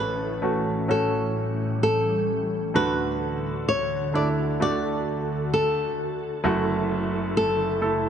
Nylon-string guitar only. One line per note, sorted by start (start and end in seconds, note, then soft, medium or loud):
0.00 0.90 B4 medium
0.91 1.82 A4 medium
1.83 2.75 A4 medium
2.76 3.68 B4 medium
3.69 4.15 C#5 medium
4.15 4.28 D5 medium
4.62 5.49 D5 medium
5.54 6.18 A4 medium
7.37 8.09 A4 medium